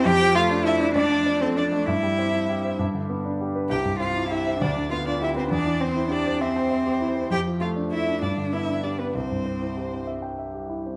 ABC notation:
X:1
M:6/8
L:1/16
Q:3/8=66
K:C
V:1 name="Violin"
g2 f2 e2 d3 c d2 | e6 z6 | g2 f2 e2 d2 f d e c | d2 c2 d2 c6 |
g2 f2 e2 d2 e2 d B | c6 z6 |]
V:2 name="Cello"
G2 F2 E2 D3 C D2 | E6 z6 | G2 F2 E2 D2 F D E C | D2 C2 D2 C6 |
G2 F2 E2 D2 E2 D B, | C6 z6 |]
V:3 name="Grand piano"
F,, F, A, D A D d a d A D A, | G,, G, C E G c G,, D, B, D G B | C,, G,, C E G c D,, D, B, F G B | E,, E, C E G c e g e G E C |
F,, F, A, D A D G,, D, B, D G B | C,, G,, C E G c e g e G E C |]